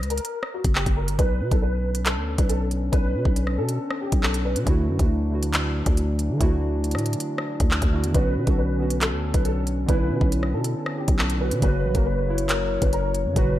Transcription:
0.00 C#2, closed hi-hat
0.10 A#4, closed hi-hat
0.18 closed hi-hat
0.25 closed hi-hat
0.43 cross-stick
0.54 F#4
0.64 F#1, kick, closed hi-hat
0.75 G4, clap
0.86 F#1, kick, closed hi-hat
0.97 A#4
1.08 G1, closed hi-hat
1.19 B1 D3 B3 C#4 B4, kick, closed hi-hat
1.41 B2
1.51 B1 A4, kick, closed hi-hat
1.62 B4
1.95 closed hi-hat
2.05 A4, clap, closed hi-hat
2.17 D2
2.38 B1 B4, kick, closed hi-hat
2.49 A4, closed hi-hat
2.71 closed hi-hat
2.92 B1 B4, kick, closed hi-hat
3.14 B2
3.25 B1, kick
3.36 closed hi-hat
3.47 cross-stick
3.58 B2 A4
3.69 closed hi-hat
3.91 cross-stick
4.01 G4
4.12 B1, kick, closed hi-hat
4.23 A4, clap
4.34 closed hi-hat
4.45 B4
4.56 B2, closed hi-hat
4.64 D2 D3 E3 F#3 A3 D4 E4, kick, closed hi-hat
4.69 F#4
4.88 F#2
4.97 D2 D3 A3 E4, kick, closed hi-hat
5.02 F#4
5.30 D3 A3 E4
5.35 F#4
5.43 closed hi-hat
5.54 clap, closed hi-hat
5.86 D2, kick, closed hi-hat
5.97 closed hi-hat
6.19 closed hi-hat
6.30 D3
6.38 D2 D3 A3 E4, kick, closed hi-hat
6.43 F#4
6.84 closed hi-hat
6.91 A2, cross-stick, closed hi-hat
6.98 closed hi-hat
7.06 closed hi-hat
7.13 closed hi-hat
7.20 closed hi-hat
7.38 cross-stick
7.60 D2, kick, closed hi-hat
7.71 clap
7.82 D2, kick, closed hi-hat
7.91 D3 A3 E4
7.96 F#4
8.04 E2, closed hi-hat
8.12 B1 D3 B3 C#4 B4, kick, closed hi-hat
8.17 F#4
8.36 B2
8.45 B1 D3 B3 C#4 A4, kick, closed hi-hat
8.50 F#4
8.58 B4
8.77 D3 B3 C#4
8.82 F#4
8.90 closed hi-hat
9.01 A4, clap, closed hi-hat
9.12 D2
9.34 B1 B4, kick, closed hi-hat
9.45 A4, closed hi-hat
9.67 closed hi-hat
9.86 B1 D3 B3 C#4 B4, kick, closed hi-hat
9.91 E4
10.10 B2
10.21 B1, kick
10.32 closed hi-hat
10.43 cross-stick
10.54 B2 A4
10.64 closed hi-hat
10.86 cross-stick
10.97 G4
11.08 B1, kick, closed hi-hat
11.19 A4, clap
11.30 closed hi-hat
11.38 D3 B3 C#4 B4
11.43 F#4
11.51 B2, closed hi-hat
11.60 F#1 C#3 F#3 A#3 C#4 B4 C#5, kick, closed hi-hat
11.65 F#4
11.84 A#1
11.93 F#1 C#3 F#3 A#3 A#4, kick, closed hi-hat
11.98 F#4
12.06 B4
12.25 C#3 F#3 A#3
12.30 E4
12.38 closed hi-hat
12.49 A#4, clap, closed hi-hat
12.81 F#1 B4, kick, closed hi-hat
12.93 A#4, closed hi-hat
13.15 closed hi-hat
13.25 F#2
13.33 F#1 A#2 C#3 F#3 B4, kick, closed hi-hat
13.38 F#4

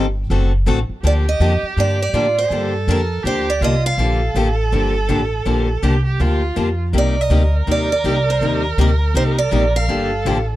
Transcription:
Already playing: G1
0.30 F#1 D3 A3 C4 F#4 A4
0.66 A1 D3 A3 C4 F#4 A4
0.89 muted upright bass stroke
1.03 D2 D3 F3 A#3 D4 G4 D5
1.29 D#5
1.40 F2 D3 F3 A#3 D4 G4
1.63 muted upright bass stroke
1.77 G2 D3 F3 A#3 D4 G4 D5
2.02 D5
2.13 A2 D3 F3 A#3 D4 F4 G4
2.38 C5
2.50 G2 D3 F3 A#3 D4 G4 A4
2.87 F2 D3 F3 A#3 D4 G4 A#4
3.23 D2 D3 F3 A#3 D4 G4 C5
3.50 D5
3.61 C2 D3 F3 A#3 D4 F4 G4 D#5
3.86 F5
3.98 A#1 D3 F3 A#3 D4 G4 A4
4.35 A1 D3 F3 A#3 D4 G4
4.72 G1 D3 F3 A#3 D4 G4
5.09 A1 D3 F3 A#3 D4 G4
5.45 A#1 D3 F3 A#3 D4 G4
5.82 C2 D3 F3 A#3 D4 G4
6.06 G4
6.20 D2 D3 F3 A#3 D4 F4 G4
6.56 F2 D3 F3 A#3 D4 G4
6.93 C2 C3 G3 A#3 D#4 G4 A#4
6.98 D5
7.21 D#5
7.30 D2 C3 G3 A#3 D#4 G4
7.67 D#2 C3 G3 A#3 D#4 G4
7.71 D5
7.92 D5
8.04 C2 C3 G3 A#3 D#4 G4
8.30 C5
8.41 D#2 C3 G3 A#3 D#4 G4
8.78 D2 C3 G3 A#3 D#4 G4 A#4
9.14 C2 C3 G3 A#3 D#4 G4 C5
9.38 D5
9.51 A#1 C3 G3 A#3 D#4 G4
9.76 F5
9.88 G1 D3 F3 A#3 D4 G4 A4
10.25 A1 D3 F3 A#3 D4 G4

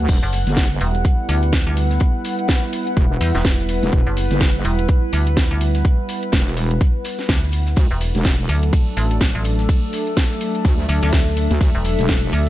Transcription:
Already playing: D4 A4 B4 F#5
0.08 E1 G3 B3 E4, kick, closed hi-hat, crash
0.23 F#1, closed hi-hat
0.33 closed hi-hat, open hi-hat
0.47 F#1 B4, snare, closed hi-hat
0.57 kick, snare, closed hi-hat, open hi-hat
0.80 E1, closed hi-hat, open hi-hat
0.95 closed hi-hat
1.05 kick, closed hi-hat
1.29 D2, closed hi-hat, open hi-hat
1.43 closed hi-hat
1.53 kick, snare, closed hi-hat
1.67 D2
1.77 closed hi-hat, open hi-hat
1.90 snare, closed hi-hat
2.00 kick, closed hi-hat
2.24 closed hi-hat, open hi-hat
2.39 closed hi-hat
2.48 kick, snare, closed hi-hat
2.63 snare
2.73 closed hi-hat, open hi-hat
2.87 closed hi-hat
2.97 E1, kick, closed hi-hat
3.21 E2, snare, closed hi-hat, open hi-hat
3.35 E1, snare, closed hi-hat
3.45 kick, snare, closed hi-hat
3.59 snare
3.69 closed hi-hat, open hi-hat
3.83 E1, snare, closed hi-hat
3.92 E1, kick, closed hi-hat
4.07 F#1, closed hi-hat
4.17 closed hi-hat, open hi-hat
4.30 F#1, snare, closed hi-hat
4.41 kick, snare, closed hi-hat, open hi-hat
4.65 E1, closed hi-hat, open hi-hat
4.79 closed hi-hat
4.88 kick, closed hi-hat
5.13 D2, closed hi-hat, open hi-hat
5.27 closed hi-hat
5.37 kick, snare, closed hi-hat
5.51 D2
5.61 closed hi-hat, open hi-hat
5.75 snare, closed hi-hat
5.85 kick, closed hi-hat
6.09 closed hi-hat, open hi-hat
6.23 closed hi-hat
6.32 E1, kick, snare, closed hi-hat
6.47 snare
6.57 closed hi-hat, open hi-hat
6.71 closed hi-hat
6.81 kick, closed hi-hat
7.04 snare, closed hi-hat, open hi-hat
7.19 snare, closed hi-hat
7.29 D2, kick, snare, closed hi-hat
7.43 snare
7.52 closed hi-hat, open hi-hat
7.66 snare, closed hi-hat
7.76 D2 F#3 A3 D4 A4, kick, closed hi-hat, ride
7.91 E1, closed hi-hat
8.01 closed hi-hat, open hi-hat
8.15 E1, snare, closed hi-hat
8.24 A4, kick, snare, closed hi-hat, open hi-hat, ride
8.49 D2, closed hi-hat, open hi-hat
8.63 closed hi-hat
8.73 kick, closed hi-hat, ride
8.97 A1, closed hi-hat, open hi-hat
9.11 closed hi-hat
9.21 kick, snare, closed hi-hat, ride
9.35 A1 E5
9.44 closed hi-hat, open hi-hat
9.59 snare, closed hi-hat
9.69 kick, closed hi-hat, ride
9.93 closed hi-hat, open hi-hat
10.07 closed hi-hat
10.17 kick, snare, closed hi-hat, ride
10.31 snare
10.41 closed hi-hat, open hi-hat
10.55 closed hi-hat
10.65 D2, kick, closed hi-hat, ride
10.88 D2, snare, closed hi-hat, open hi-hat
11.03 D2, snare, closed hi-hat
11.12 kick, snare, closed hi-hat, ride
11.27 snare
11.37 closed hi-hat, open hi-hat
11.50 D2, snare, closed hi-hat
11.61 D2, kick, closed hi-hat, ride
11.75 E1, closed hi-hat
11.85 closed hi-hat, open hi-hat
11.99 E1, snare, closed hi-hat
12.09 kick, snare, closed hi-hat, open hi-hat, ride
12.32 D2, closed hi-hat, open hi-hat

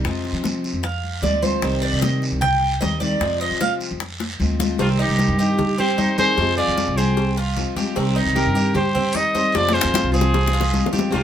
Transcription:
0.04 F2 C3 F3 G#3 C4 F4, high bongo, long guiro
0.25 high bongo, high conga
0.33 F3
0.44 high bongo, high conga, short guiro
0.64 high bongo, high conga, short guiro
0.73 F2
0.83 F5, muted steel-string acoustic guitar stroke, high bongo, high conga, long guiro
1.04 high conga
1.22 D2 F3 G#3 C4 F4 D5, high bongo, low bongo, high conga, short guiro
1.42 F3 G#3 C4 F4 C5, high bongo, high conga, short guiro
1.62 C2 C3 D#3 G3 C4 G4, high bongo, high conga, long guiro
1.82 D5, high bongo, high conga
1.93 C3
2.01 D#5, high bongo, high conga, short guiro
2.22 high bongo, short guiro
2.32 C2
2.41 G5, muted steel-string acoustic guitar stroke, high bongo, high conga, low conga, long guiro
2.62 high conga
2.81 D#2 D#3 G3 C4 G4 D#5, high bongo, low bongo, high conga, short guiro
3.00 D#3 G3 C4 G4 D5, high bongo, high conga, short guiro
3.20 F2 C3 F3 G#3 C4 F4, high bongo, high conga, long guiro
3.41 D#5, high bongo, high conga
3.51 F3
3.61 F5, high bongo, high conga, short guiro
3.80 high bongo, high conga, short guiro
3.91 F2
4.00 muted steel-string acoustic guitar stroke, high bongo, high conga, long guiro
4.20 high bongo, high conga
4.40 D2 F3 G#3 C4 F4, high conga, short guiro
4.59 F3 G#3 C4 F4, low bongo, high conga, short guiro
4.78 C2 C3 D#3 G3 C4 F4 G4, cowbell, high conga, long guiro
4.99 D#4 G4, high conga
5.09 C2
5.19 cowbell, high conga, short guiro
5.28 G2
5.38 D#4 G4, short guiro
5.58 muted steel-string acoustic guitar stroke, cowbell, high conga, low conga, long guiro
5.78 C4 G4 C5, high conga
5.98 D#3 G3 C4 D#4 G4, cowbell, high conga, short guiro
6.18 D#3 G3 C4 G4 G#4 C5, cowbell, high conga, short guiro
6.37 F2 C3 F3 G#3 C4 F4, cowbell, high conga, long guiro
6.57 F4 G#4 D5, high conga
6.68 F2
6.78 cowbell, high conga, short guiro
6.87 C2
6.97 C4 G#4 C5, short guiro
7.17 muted steel-string acoustic guitar stroke, cowbell, high conga, long guiro
7.37 F4, cowbell, high conga
7.57 F3 G#3 C4 F4, cowbell, high conga, short guiro
7.76 F3 G#3 C4 F4 G4, cowbell, high conga, short guiro
7.95 C2 C3 D#3 G3 C4 G4, cowbell, high conga, long guiro
8.16 D#4
8.26 C2
8.36 G4 A#4, cowbell, high conga, short guiro
8.46 G2
8.55 G4, short guiro
8.74 G4 C5, muted steel-string acoustic guitar stroke, cowbell, high conga, low conga, long guiro
8.95 C4, high conga, low conga
9.13 D#3 G3 C4 D#4 G4 C5 D#5, cowbell, high conga, short guiro
9.35 D#3 G3 C4 G4 C5, cowbell, high conga, short guiro
9.52 F2 C3 F3 G#3 C4 G#4 D5, cowbell, high bongo, high conga, long guiro
9.57 F4
9.68 G#4, high bongo
9.73 F4 C5, high conga
9.81 F2, high bongo
9.94 cowbell, high bongo, high conga, short guiro
10.04 C2
10.12 C4 F4 G#4, short guiro
10.21 low bongo
10.33 muted steel-string acoustic guitar stroke, cowbell, low bongo, high conga, long guiro
10.47 low bongo
10.53 F4, cowbell, high conga
10.61 low bongo
10.73 F3 G#3 C4 F4, cowbell, high conga, short guiro
10.86 low bongo
10.93 F3 G#3 C4 F4 G4, cowbell, high conga, short guiro
10.99 low bongo
11.11 C2 C3 D#3 G3 C4 F4, cowbell, high conga, long guiro
11.15 C4 G4

